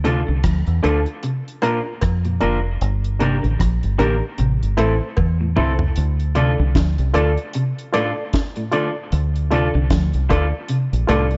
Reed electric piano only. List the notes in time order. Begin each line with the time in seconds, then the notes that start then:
0.04 D4 F4 A4
0.83 D4 F4 A4
1.62 D4 F4 A#4
1.86 F4 A#4
2.40 D4 F4 A#4
3.19 D4 G4 A#4
3.98 D4 G4 A#4
4.77 E4 A4 C5
5.00 A4 C5
5.56 E4 A4 C5
6.35 F4 A4 D5
7.14 F4 A4 D5
7.92 F4 A4 D5
8.16 A4 D5
8.56 A4 D5
8.71 F4 A4 D5
9.50 F4 A4 D5
10.30 F4 A4 D5
11.08 F4 A4 D5
11.32 A4 D5